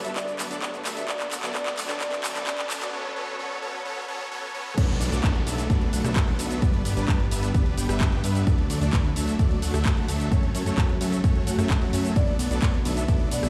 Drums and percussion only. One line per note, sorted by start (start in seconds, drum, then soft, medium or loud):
0.05 closed hi-hat medium
0.05 shaker soft
0.16 kick loud
0.16 clap medium
0.16 closed hi-hat medium
0.16 shaker soft
0.28 closed hi-hat soft
0.28 shaker soft
0.39 clap medium
0.39 open hi-hat loud
0.39 shaker medium
0.51 closed hi-hat medium
0.51 shaker soft
0.62 kick loud
0.62 clap medium
0.62 closed hi-hat medium
0.62 shaker soft
0.74 closed hi-hat soft
0.74 shaker soft
0.85 clap medium
0.85 open hi-hat loud
0.85 shaker medium
0.97 closed hi-hat medium
0.97 shaker soft
1.08 kick loud
1.08 clap medium
1.08 closed hi-hat medium
1.08 shaker soft
1.20 clap medium
1.20 closed hi-hat soft
1.20 shaker soft
1.32 clap medium
1.32 open hi-hat loud
1.32 shaker medium
1.43 clap medium
1.43 closed hi-hat medium
1.43 shaker soft
1.55 kick loud
1.55 clap medium
1.55 closed hi-hat medium
1.55 shaker soft
1.66 clap medium
1.66 closed hi-hat soft
1.66 shaker soft
1.78 clap medium
1.78 open hi-hat medium
1.78 shaker medium
1.89 clap medium
1.89 closed hi-hat medium
1.89 shaker soft
2.01 kick loud
2.01 clap loud
2.01 closed hi-hat medium
2.01 shaker soft
2.12 clap medium
2.12 closed hi-hat soft
2.12 shaker soft
2.24 clap loud
2.24 open hi-hat loud
2.24 shaker medium
2.35 clap medium
2.35 closed hi-hat medium
2.35 shaker soft
2.47 kick loud
2.47 clap loud
2.47 closed hi-hat medium
2.47 shaker soft
2.58 clap medium
2.58 closed hi-hat soft
2.58 shaker soft
2.70 clap loud
2.70 open hi-hat loud
2.70 shaker medium
2.82 clap medium
2.82 closed hi-hat medium
2.82 shaker soft
4.78 kick loud
4.78 closed hi-hat medium
4.78 crash loud
4.78 shaker soft
4.89 closed hi-hat soft
5.01 open hi-hat loud
5.01 shaker medium
5.12 closed hi-hat medium
5.12 shaker soft
5.24 kick loud
5.24 clap loud
5.24 closed hi-hat medium
5.24 shaker soft
5.35 closed hi-hat soft
5.47 open hi-hat loud
5.47 shaker medium
5.58 closed hi-hat medium
5.58 shaker soft
5.70 kick loud
5.70 closed hi-hat medium
5.70 shaker soft
5.81 closed hi-hat soft
5.93 open hi-hat loud
5.93 shaker medium
6.04 cross-stick medium
6.04 closed hi-hat medium
6.04 shaker soft
6.16 kick loud
6.16 clap loud
6.16 closed hi-hat medium
6.16 shaker soft
6.27 closed hi-hat soft
6.39 open hi-hat loud
6.39 shaker medium
6.51 closed hi-hat medium
6.51 shaker soft
6.62 kick loud
6.62 closed hi-hat medium
6.62 shaker soft
6.74 closed hi-hat soft
6.85 open hi-hat loud
6.85 shaker medium
6.97 closed hi-hat medium
6.97 shaker soft
7.08 kick loud
7.08 clap loud
7.08 closed hi-hat medium
7.08 shaker soft
7.20 closed hi-hat soft
7.31 open hi-hat loud
7.31 shaker medium
7.43 closed hi-hat medium
7.43 shaker soft
7.54 kick loud
7.54 closed hi-hat medium
7.54 shaker soft
7.66 closed hi-hat soft
7.78 open hi-hat loud
7.78 shaker medium
7.89 cross-stick medium
7.89 closed hi-hat medium
7.89 shaker soft
8.01 kick loud
8.01 clap loud
8.01 closed hi-hat medium
8.01 shaker soft
8.12 closed hi-hat soft
8.24 open hi-hat loud
8.24 shaker medium
8.35 closed hi-hat medium
8.35 shaker soft
8.47 kick loud
8.47 closed hi-hat medium
8.47 shaker soft
8.58 closed hi-hat soft
8.70 open hi-hat loud
8.70 shaker medium
8.81 closed hi-hat medium
8.81 shaker soft
8.93 kick loud
8.93 clap loud
8.93 closed hi-hat medium
8.93 shaker soft
9.05 closed hi-hat soft
9.16 open hi-hat loud
9.16 shaker medium
9.28 closed hi-hat medium
9.28 shaker soft
9.39 kick loud
9.39 closed hi-hat medium
9.39 shaker soft
9.51 closed hi-hat soft
9.62 open hi-hat loud
9.62 shaker medium
9.74 cross-stick medium
9.74 closed hi-hat medium
9.74 shaker soft
9.85 kick loud
9.85 clap loud
9.85 closed hi-hat medium
9.85 shaker soft
9.97 closed hi-hat soft
10.08 open hi-hat loud
10.08 shaker medium
10.20 closed hi-hat medium
10.20 shaker soft
10.32 kick loud
10.32 closed hi-hat soft
10.32 shaker soft
10.43 closed hi-hat soft
10.55 open hi-hat loud
10.55 shaker medium
10.66 closed hi-hat medium
10.66 shaker soft
10.78 kick loud
10.78 clap loud
10.78 closed hi-hat medium
10.78 shaker soft
10.89 closed hi-hat soft
11.01 open hi-hat loud
11.01 shaker medium
11.12 closed hi-hat medium
11.12 shaker soft
11.24 kick loud
11.24 closed hi-hat medium
11.24 shaker soft
11.35 closed hi-hat soft
11.47 open hi-hat loud
11.47 shaker medium
11.59 cross-stick medium
11.59 closed hi-hat medium
11.59 shaker soft
11.70 kick loud
11.70 clap loud
11.70 closed hi-hat medium
11.70 shaker soft
11.82 closed hi-hat soft
11.93 open hi-hat loud
11.93 shaker medium
12.05 closed hi-hat medium
12.05 shaker soft
12.16 kick loud
12.16 closed hi-hat soft
12.16 ride medium
12.16 shaker soft
12.28 closed hi-hat soft
12.39 open hi-hat loud
12.39 ride medium
12.39 shaker medium
12.51 closed hi-hat medium
12.51 shaker soft
12.62 kick loud
12.62 clap loud
12.62 closed hi-hat medium
12.62 ride medium
12.62 shaker soft
12.74 closed hi-hat soft
12.85 open hi-hat loud
12.85 ride medium
12.85 shaker medium
12.97 closed hi-hat medium
12.97 shaker soft
13.08 kick loud
13.08 closed hi-hat soft
13.08 ride medium
13.08 shaker soft
13.20 closed hi-hat soft
13.31 open hi-hat loud
13.31 ride medium
13.31 shaker medium
13.43 cross-stick medium
13.43 closed hi-hat medium
13.43 shaker soft